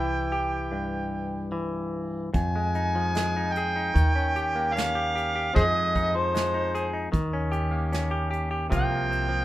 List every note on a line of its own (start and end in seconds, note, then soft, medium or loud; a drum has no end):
0.00 2.30 C2 medium
0.00 1.51 E3 medium
0.00 2.31 E4 medium
0.00 0.31 G4 medium
0.00 1.56 G5 medium
0.32 2.30 G4 medium
0.72 2.30 G2 medium
1.52 2.29 E3 medium
2.34 3.95 F2 medium
2.34 3.92 F2 medium
2.34 3.54 G#5 loud
2.34 kick medium
2.34 closed hi-hat medium
2.56 3.14 G#3 soft
2.75 3.36 D#4 soft
2.75 closed hi-hat soft
2.95 3.91 F3 medium
3.15 3.96 G#3 medium
3.15 snare medium
3.15 closed hi-hat medium
3.37 3.75 D#4 soft
3.53 4.75 G5 medium
3.53 closed hi-hat soft
3.57 3.91 G#4 medium
3.76 4.15 D#4 medium
3.94 5.52 D#2 medium
3.94 5.54 D#3 medium
3.94 kick medium
3.94 closed hi-hat medium
4.15 4.74 C#4 medium
4.36 4.94 G4 medium
4.36 closed hi-hat soft
4.55 5.50 A#3 soft
4.73 5.50 C#4 medium
4.73 5.54 F5 medium
4.73 closed hi-hat medium
4.78 snare medium
4.95 5.14 G4 medium
5.16 5.34 G4 medium
5.16 closed hi-hat soft
5.36 5.50 G4 medium
5.54 7.12 F2 medium
5.54 7.10 F2 medium
5.54 6.14 F3 medium
5.54 5.73 G#3 medium
5.54 5.94 D#4 medium
5.54 5.62 G#4 medium
5.54 6.74 G#4 medium
5.54 5.62 C5 medium
5.54 6.18 D#5 medium
5.54 kick medium
5.58 closed hi-hat medium
5.74 6.33 G#3 soft
5.96 6.53 D#4 medium
5.96 kick medium
5.96 closed hi-hat soft
6.15 7.08 F3 medium
6.15 6.94 C5 medium
6.34 7.13 G#3 medium
6.34 snare medium
6.34 closed hi-hat medium
6.54 6.92 D#4 medium
6.75 7.09 G#4 medium
6.75 closed hi-hat medium
6.93 7.08 D#4 medium
7.12 8.68 D#2 medium
7.12 8.70 D#3 medium
7.12 kick medium
7.12 closed hi-hat medium
7.33 7.91 C#4 medium
7.52 8.10 G4 medium
7.52 closed hi-hat soft
7.71 8.71 A#3 medium
7.92 8.67 C#4 medium
7.92 snare medium
7.92 closed hi-hat medium
8.11 8.29 G4 medium
8.31 8.50 G4 medium
8.31 closed hi-hat soft
8.51 8.66 G4 medium
8.70 9.45 C2 medium
8.70 9.30 C3 medium
8.70 9.28 F3 medium
8.70 8.89 A#3 soft
8.70 9.09 C4 medium
8.70 9.45 F4 medium
8.70 kick medium
8.70 closed hi-hat medium
8.75 9.45 G5 loud
8.90 9.45 A#3 soft
9.11 9.45 C4 medium
9.11 closed hi-hat soft
9.29 9.45 F3 medium